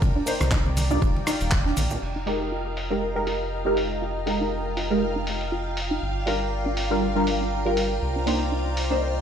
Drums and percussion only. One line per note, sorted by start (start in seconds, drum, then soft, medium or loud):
0.02 kick loud
0.02 ride loud
0.02 cabasa soft
0.27 open hi-hat loud
0.27 ride medium
0.27 cabasa medium
0.40 cross-stick medium
0.40 ride soft
0.40 muted conga medium
0.40 cabasa medium
0.51 kick loud
0.51 snare loud
0.51 clap loud
0.51 ride medium
0.51 cabasa soft
0.66 muted conga soft
0.66 high conga medium
0.77 open hi-hat loud
0.77 ride medium
0.77 high conga medium
0.77 cabasa medium
0.91 low conga medium
0.91 cabasa medium
1.02 kick loud
1.02 ride medium
1.02 cabasa soft
1.16 muted conga medium
1.27 cross-stick medium
1.27 open hi-hat loud
1.27 ride medium
1.27 cabasa medium
1.41 open hi-hat medium
1.41 cabasa soft
1.51 kick loud
1.51 snare loud
1.51 clap loud
1.51 ride medium
1.51 cabasa soft
1.66 snare soft
1.77 open hi-hat loud
1.77 ride medium
1.77 high conga medium
1.77 cabasa medium
1.90 low conga medium
1.90 cabasa medium
2.02 crash medium
2.27 open hi-hat loud
2.77 open hi-hat medium
3.27 open hi-hat loud
3.77 open hi-hat loud
4.27 open hi-hat loud
4.77 open hi-hat loud
5.27 open hi-hat loud
5.41 open hi-hat medium
5.77 open hi-hat loud
6.27 open hi-hat loud
6.77 open hi-hat loud
7.27 open hi-hat loud
7.77 open hi-hat loud
8.27 open hi-hat loud
8.77 open hi-hat medium